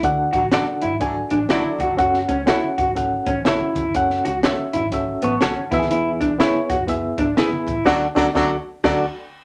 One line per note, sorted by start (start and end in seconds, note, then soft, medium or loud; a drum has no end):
0.03 0.27 D2 loud
0.03 0.79 D3 medium
0.03 0.41 D4 medium
0.03 0.41 F#4 medium
0.03 0.41 A4 medium
0.03 0.41 F#5 medium
0.03 kick loud
0.03 closed hi-hat medium
0.33 0.60 A1 medium
0.33 0.42 F#3 medium
0.33 0.42 A3 medium
0.33 0.42 D4 medium
0.33 0.45 F#4 medium
0.33 0.42 A4 medium
0.33 kick medium
0.33 closed hi-hat medium
0.33 muted conga soft
0.52 0.65 F#3 medium
0.52 0.66 A3 medium
0.52 0.90 D4 medium
0.52 0.65 D4 medium
0.52 0.64 F#4 medium
0.52 0.90 F#4 medium
0.52 0.66 A4 medium
0.52 0.64 A4 medium
0.52 0.90 A4 medium
0.52 0.64 D5 medium
0.52 0.91 F#5 medium
0.52 snare loud
0.52 closed hi-hat medium
0.52 high conga medium
0.82 0.91 F#1 medium
0.82 0.94 E4 medium
0.82 closed hi-hat medium
0.82 muted conga soft
0.82 low conga medium
0.91 1.22 G#1 medium
1.00 1.15 F#3 medium
1.00 1.14 A3 medium
1.00 1.38 D4 medium
1.00 1.14 D4 medium
1.00 1.38 F#4 medium
1.00 1.39 A4 medium
1.00 1.14 A4 medium
1.00 1.39 G#5 medium
1.00 kick medium
1.00 closed hi-hat medium
1.00 muted conga soft
1.30 1.46 A1 medium
1.30 1.43 D4 medium
1.30 closed hi-hat medium
1.30 muted conga soft
1.30 low conga medium
1.49 1.62 B1 medium
1.49 1.97 F#3 medium
1.49 1.97 A3 medium
1.49 1.87 D4 medium
1.49 1.97 D4 medium
1.49 1.69 E4 medium
1.49 1.87 F#4 medium
1.49 1.62 F#4 medium
1.49 1.88 A4 medium
1.49 1.97 A4 medium
1.49 1.62 A4 medium
1.49 1.88 D5 medium
1.49 1.62 D5 medium
1.49 snare medium
1.49 closed hi-hat medium
1.49 high conga medium
1.79 1.87 E1 medium
1.79 1.92 F#4 medium
1.79 kick medium
1.79 closed hi-hat medium
1.79 high conga medium
1.90 1.97 F1 medium
1.97 2.22 F#1 loud
1.97 2.36 C#4 medium
1.97 2.36 F#4 medium
1.97 2.17 F#4 medium
1.97 2.36 A4 medium
1.97 2.36 F#5 medium
1.97 kick loud
1.97 closed hi-hat medium
2.14 snare soft
2.29 2.56 C#2 medium
2.29 2.40 C#4 medium
2.29 kick medium
2.29 closed hi-hat medium
2.29 muted conga soft
2.46 2.85 C#4 medium
2.46 2.66 E4 medium
2.46 2.85 F#4 medium
2.46 2.60 F#4 medium
2.46 2.85 A4 medium
2.46 2.60 A4 medium
2.46 2.60 C#5 medium
2.46 2.85 F#5 medium
2.46 snare loud
2.46 closed hi-hat medium
2.46 high conga medium
2.78 2.85 F#1 medium
2.78 2.90 F#4 medium
2.78 kick loud
2.78 closed hi-hat medium
2.78 low conga medium
2.87 3.18 G#1 medium
2.95 3.34 C#4 medium
2.95 3.34 F#4 medium
2.95 3.34 A4 medium
2.95 3.34 F#5 medium
2.95 kick medium
2.95 closed hi-hat medium
2.95 muted conga soft
3.26 3.42 A1 medium
3.26 3.38 C#4 medium
3.26 kick loud
3.26 closed hi-hat medium
3.26 muted conga soft
3.26 low conga medium
3.45 3.58 B1 medium
3.45 3.83 C#4 medium
3.45 3.92 E4 medium
3.45 3.83 F#4 medium
3.45 3.58 F#4 medium
3.45 3.83 A4 medium
3.45 3.58 A4 medium
3.45 3.58 C#5 medium
3.45 3.84 E5 medium
3.45 snare loud
3.45 closed hi-hat medium
3.45 high conga medium
3.61 high conga soft
3.75 3.83 E1 medium
3.75 kick medium
3.75 closed hi-hat medium
3.75 high conga medium
3.85 3.93 F1 medium
3.95 4.18 F#1 loud
3.95 4.32 C#4 medium
3.95 4.33 F#4 medium
3.95 4.33 A4 medium
3.95 4.33 F#5 medium
3.95 kick medium
3.95 closed hi-hat medium
4.10 snare soft
4.25 4.52 C#2 medium
4.25 4.37 F#4 medium
4.25 closed hi-hat medium
4.25 muted conga soft
4.43 4.81 C#4 medium
4.43 4.81 F#4 medium
4.43 4.55 F#4 medium
4.43 4.56 A4 medium
4.43 4.82 A4 medium
4.43 4.56 C#5 medium
4.43 4.82 E5 medium
4.43 snare loud
4.43 closed hi-hat medium
4.43 high conga medium
4.73 4.81 F#1 medium
4.73 4.85 E4 medium
4.73 closed hi-hat medium
4.73 muted conga soft
4.73 low conga medium
4.84 5.14 G#1 medium
4.92 5.30 C#4 medium
4.92 5.30 F#4 medium
4.92 5.31 A4 medium
4.92 5.31 E5 medium
4.92 kick medium
4.92 closed hi-hat medium
4.92 muted conga soft
5.22 5.38 A1 medium
5.22 5.34 B3 medium
5.22 5.41 A5 medium
5.22 5.42 C#6 medium
5.22 closed hi-hat medium
5.22 muted conga soft
5.22 low conga medium
5.41 5.54 B1 medium
5.41 5.60 C#4 medium
5.41 5.53 F#4 medium
5.41 5.53 A4 medium
5.41 5.54 C#5 medium
5.41 5.88 F#5 medium
5.41 5.88 A5 medium
5.41 snare loud
5.41 closed hi-hat medium
5.41 high conga medium
5.57 high conga medium
5.71 5.79 E1 medium
5.71 6.36 E3 medium
5.71 6.28 B3 medium
5.71 5.83 E4 medium
5.71 6.29 E4 medium
5.71 5.77 F#4 medium
5.71 6.29 E5 loud
5.71 kick loud
5.71 snare soft
5.71 closed hi-hat medium
5.71 high conga medium
5.79 5.88 D#1 medium
5.79 6.32 G#4 medium
5.79 snare soft
5.90 6.14 E1 loud
5.90 6.09 E4 medium
5.90 closed hi-hat medium
6.21 6.47 B1 medium
6.21 6.32 D4 medium
6.21 kick medium
6.21 closed hi-hat medium
6.21 muted conga soft
6.38 6.76 B3 medium
6.38 6.51 B3 medium
6.38 6.58 E4 medium
6.38 6.77 E4 medium
6.38 6.51 E4 medium
6.38 6.77 G#4 medium
6.38 6.52 G#4 medium
6.38 6.77 C#5 medium
6.38 snare loud
6.38 closed hi-hat medium
6.38 high conga medium
6.70 6.77 E1 medium
6.70 6.81 F#4 medium
6.70 kick loud
6.70 closed hi-hat medium
6.70 muted conga soft
6.70 low conga medium
6.78 7.10 F#1 medium
6.87 7.25 B3 medium
6.87 7.26 E4 medium
6.87 7.26 G#4 medium
6.87 7.26 E5 medium
6.87 kick medium
6.87 closed hi-hat medium
6.87 muted conga soft
7.18 7.33 G#1 medium
7.18 7.30 D4 medium
7.18 kick loud
7.18 closed hi-hat medium
7.18 muted conga soft
7.18 low conga medium
7.37 7.74 B3 medium
7.37 7.49 B3 medium
7.37 7.74 E4 medium
7.37 7.83 E4 medium
7.37 7.49 E4 medium
7.37 7.75 G#4 medium
7.37 7.49 G#4 medium
7.37 7.75 E5 medium
7.37 snare loud
7.37 closed hi-hat medium
7.37 high conga medium
7.52 muted fingered electric bass stroke soft
7.52 high conga medium
7.67 7.82 A1 medium
7.67 kick medium
7.67 closed hi-hat medium
7.67 high conga medium
7.85 8.06 D2 loud
7.85 8.06 D3 loud
7.85 8.01 F#3 loud
7.85 8.01 A3 medium
7.85 8.06 D4 loud
7.85 8.01 D4 medium
7.85 8.06 F#4 medium
7.85 8.07 F#4 loud
7.85 8.01 A4 loud
7.85 8.07 A4 loud
7.85 8.07 A4 medium
7.85 8.07 D5 loud
7.85 8.07 F#5 loud
7.85 kick loud
7.85 snare loud
7.85 crash medium
8.14 8.29 D2 medium
8.14 8.29 D3 loud
8.14 8.25 F#3 loud
8.14 8.25 A3 medium
8.14 8.25 D4 loud
8.14 8.28 D4 loud
8.14 8.29 F#4 loud
8.14 8.25 A4 loud
8.14 8.29 A4 medium
8.14 8.29 A4 loud
8.14 8.30 D5 loud
8.14 8.30 F#5 loud
8.14 kick loud
8.14 snare loud
8.34 8.55 D2 loud
8.34 8.50 F#3 loud
8.34 8.50 A3 medium
8.34 8.50 D4 loud
8.34 8.55 D4 loud
8.34 8.56 F#4 medium
8.34 8.56 F#4 loud
8.34 8.50 A4 loud
8.34 8.56 A4 loud
8.34 8.56 D5 loud
8.34 8.56 F#5 loud
8.34 kick loud
8.34 snare loud
8.84 9.04 D2 loud
8.84 8.99 F#3 loud
8.84 8.99 A3 medium
8.84 8.99 D4 loud
8.84 9.04 D4 medium
8.84 9.04 F#4 loud
8.84 9.05 F#4 medium
8.84 8.99 A4 medium
8.84 9.05 A4 loud
8.84 9.05 A4 medium
8.84 9.05 D5 loud
8.84 9.05 F#5 medium
8.84 kick loud
8.84 snare loud
8.84 crash medium